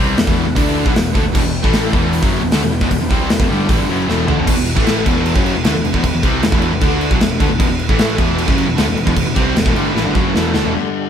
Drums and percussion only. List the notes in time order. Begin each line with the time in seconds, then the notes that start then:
0.17 snare, open hi-hat
0.27 kick
0.56 kick, open hi-hat
0.86 kick
0.96 snare, open hi-hat
1.15 kick
1.35 kick, crash
1.64 kick
1.73 snare, open hi-hat
1.93 kick
2.13 open hi-hat
2.23 kick
2.52 snare, open hi-hat
2.81 kick
2.91 kick, open hi-hat
3.11 kick
3.30 snare, open hi-hat
3.40 kick
3.69 kick, open hi-hat
4.09 snare
4.28 floor tom
4.47 kick, crash
4.67 crash
4.77 kick
4.87 snare, crash
5.06 kick, crash
5.26 crash
5.36 kick
5.46 crash
5.64 snare, crash
5.85 crash
5.94 kick
6.03 kick, crash
6.23 kick, crash
6.43 snare, crash
6.52 kick
6.62 crash
6.81 kick, crash
7.01 crash
7.11 kick
7.21 snare, crash
7.40 kick, crash
7.60 kick, crash
7.79 crash
7.89 kick
7.99 snare, crash
8.18 kick, crash
8.38 crash
8.48 kick
8.58 crash
8.78 snare, crash
8.97 crash
9.07 kick
9.16 kick, crash
9.36 kick, crash
9.56 snare, crash
9.66 kick
9.76 crash
9.97 snare
10.15 kick
10.36 snare
10.54 snare